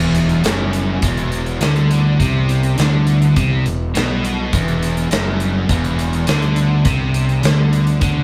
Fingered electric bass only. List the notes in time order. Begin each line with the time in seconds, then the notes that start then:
Already playing: E1
0.44 F#1
1.03 E1
1.61 D2
2.20 C2
2.78 D2
3.37 C2
3.66 E1
3.95 B1
4.53 E1
5.11 F#1
5.69 E1
6.28 D2
6.86 C2
7.44 D2
8.02 D2